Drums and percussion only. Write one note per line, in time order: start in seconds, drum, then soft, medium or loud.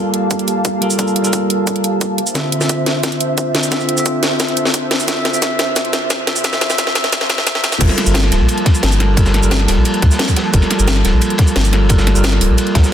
0.14 closed hi-hat medium
0.31 kick loud
0.31 closed hi-hat medium
0.31 cabasa soft
0.39 closed hi-hat soft
0.48 closed hi-hat medium
0.48 cabasa soft
0.65 kick medium
0.65 closed hi-hat medium
0.65 cabasa soft
0.82 closed hi-hat medium
0.90 cabasa medium
0.99 kick medium
0.99 closed hi-hat medium
0.99 cabasa soft
1.07 cabasa soft
1.16 closed hi-hat medium
1.25 cabasa medium
1.33 kick loud
1.33 closed hi-hat medium
1.33 cabasa soft
1.50 closed hi-hat medium
1.67 kick medium
1.67 closed hi-hat medium
1.67 cabasa soft
1.76 closed hi-hat soft
1.84 closed hi-hat medium
1.84 cabasa soft
2.01 kick medium
2.01 closed hi-hat medium
2.01 cabasa soft
2.18 closed hi-hat medium
2.27 cabasa medium
2.35 kick medium
2.35 snare soft
2.35 closed hi-hat medium
2.35 cabasa soft
2.52 closed hi-hat medium
2.61 snare soft
2.61 cabasa medium
2.69 kick loud
2.69 closed hi-hat medium
2.69 cabasa soft
2.86 snare medium
2.86 closed hi-hat medium
3.03 kick loud
3.03 snare medium
3.03 closed hi-hat medium
3.03 cabasa soft
3.12 closed hi-hat soft
3.21 closed hi-hat medium
3.21 cabasa soft
3.38 kick medium
3.38 closed hi-hat medium
3.38 cabasa soft
3.55 snare medium
3.55 closed hi-hat medium
3.63 cabasa medium
3.72 kick loud
3.72 snare medium
3.72 closed hi-hat medium
3.72 cabasa medium
3.80 cabasa soft
3.89 closed hi-hat medium
3.97 cabasa medium
4.06 kick loud
4.06 closed hi-hat medium
4.06 cabasa soft
4.23 snare medium
4.23 closed hi-hat medium
4.40 kick loud
4.40 snare medium
4.40 closed hi-hat medium
4.40 cabasa soft
4.48 closed hi-hat soft
4.57 closed hi-hat medium
4.57 cabasa soft
4.66 snare medium
4.74 kick loud
4.74 closed hi-hat medium
4.74 cabasa medium
4.91 snare medium
4.91 closed hi-hat medium
5.00 cabasa medium
5.08 kick medium
5.08 snare medium
5.08 closed hi-hat loud
5.08 cabasa medium
5.25 snare medium
5.25 closed hi-hat medium
5.34 cabasa medium
5.42 kick loud
5.42 snare medium
5.42 closed hi-hat medium
5.42 cabasa medium
5.59 snare medium
5.59 closed hi-hat medium
5.76 kick loud
5.76 snare medium
5.76 closed hi-hat medium
5.76 cabasa medium
5.85 closed hi-hat soft
5.93 snare medium
5.93 closed hi-hat medium
5.93 cabasa soft
6.10 kick loud
6.10 snare medium
6.10 closed hi-hat medium
6.10 cabasa soft
6.27 snare medium
6.27 closed hi-hat medium
6.36 cabasa medium
6.44 kick loud
6.44 snare medium
6.44 closed hi-hat loud
6.44 cabasa medium
6.53 snare medium
6.53 cabasa soft
6.61 snare loud
6.61 closed hi-hat medium
6.70 snare medium
6.70 cabasa medium
6.78 kick loud
6.78 snare loud
6.78 closed hi-hat medium
6.78 cabasa soft
6.87 snare medium
6.95 snare loud
6.95 closed hi-hat medium
6.95 cabasa soft
7.04 snare medium
7.04 closed hi-hat soft
7.13 kick loud
7.13 snare loud
7.13 closed hi-hat medium
7.13 cabasa soft
7.21 snare medium
7.21 closed hi-hat soft
7.30 snare loud
7.30 closed hi-hat medium
7.30 cabasa soft
7.38 snare medium
7.47 kick loud
7.47 snare loud
7.47 closed hi-hat loud
7.47 cabasa medium
7.55 snare loud
7.64 snare loud
7.64 closed hi-hat medium
7.64 cabasa soft
7.72 snare loud
7.72 closed hi-hat soft
7.72 cabasa medium
7.80 kick loud
7.80 closed hi-hat medium
7.80 crash loud
7.80 ride medium
7.80 cabasa soft
7.89 snare soft
7.89 cabasa soft
7.97 snare soft
7.97 closed hi-hat medium
7.97 ride medium
8.06 cabasa medium
8.14 snare loud
8.14 closed hi-hat medium
8.14 ride medium
8.14 cabasa soft
8.23 snare soft
8.32 snare soft
8.32 closed hi-hat medium
8.32 ride medium
8.32 cabasa soft
8.48 closed hi-hat medium
8.48 ride medium
8.48 cabasa soft
8.58 closed hi-hat soft
8.65 kick loud
8.65 snare medium
8.65 closed hi-hat medium
8.65 ride medium
8.75 cabasa medium
8.83 snare loud
8.83 closed hi-hat loud
8.83 ride medium
8.92 cabasa soft
9.00 snare medium
9.00 closed hi-hat medium
9.00 ride medium
9.17 kick loud
9.17 closed hi-hat medium
9.17 ride medium
9.17 cabasa soft
9.26 snare soft
9.26 cabasa soft
9.34 snare medium
9.34 closed hi-hat medium
9.34 ride medium
9.43 cabasa medium
9.51 snare loud
9.51 closed hi-hat medium
9.51 ride medium
9.51 cabasa soft
9.60 snare soft
9.60 ride soft
9.68 snare medium
9.68 open hi-hat medium
9.68 ride medium
9.68 cabasa soft
9.85 closed hi-hat medium
9.85 ride medium
9.85 cabasa soft
9.94 closed hi-hat soft
10.02 kick loud
10.02 closed hi-hat medium
10.02 ride medium
10.11 snare soft
10.11 cabasa medium
10.19 snare loud
10.19 closed hi-hat medium
10.19 ride medium
10.28 kick medium
10.28 cabasa soft
10.36 snare medium
10.36 closed hi-hat medium
10.36 ride medium
10.54 kick loud
10.54 closed hi-hat medium
10.54 ride medium
10.54 cabasa soft
10.62 snare soft
10.62 cabasa soft
10.70 snare soft
10.70 closed hi-hat medium
10.70 ride medium
10.79 cabasa medium
10.88 snare loud
10.88 closed hi-hat medium
10.88 ride medium
10.88 cabasa soft
10.96 snare soft
11.05 snare soft
11.05 closed hi-hat medium
11.05 ride medium
11.05 cabasa soft
11.22 closed hi-hat medium
11.22 ride medium
11.22 cabasa soft
11.30 closed hi-hat soft
11.38 kick loud
11.38 snare soft
11.38 closed hi-hat medium
11.38 ride medium
11.47 cabasa medium
11.56 snare loud
11.56 closed hi-hat medium
11.56 ride medium
11.64 cabasa soft
11.73 snare medium
11.73 closed hi-hat medium
11.73 ride medium
11.89 kick loud
11.89 closed hi-hat medium
11.89 ride medium
11.89 cabasa soft
11.98 snare soft
11.98 cabasa soft
12.07 snare soft
12.07 closed hi-hat medium
12.07 ride medium
12.15 cabasa medium
12.24 snare loud
12.24 closed hi-hat medium
12.24 ride medium
12.24 cabasa soft
12.32 snare soft
12.32 ride soft
12.41 open hi-hat medium
12.41 cabasa soft
12.58 closed hi-hat medium
12.58 ride medium
12.58 cabasa soft
12.67 closed hi-hat soft
12.75 kick loud
12.75 snare loud
12.75 closed hi-hat medium
12.75 ride medium
12.84 snare soft
12.84 cabasa medium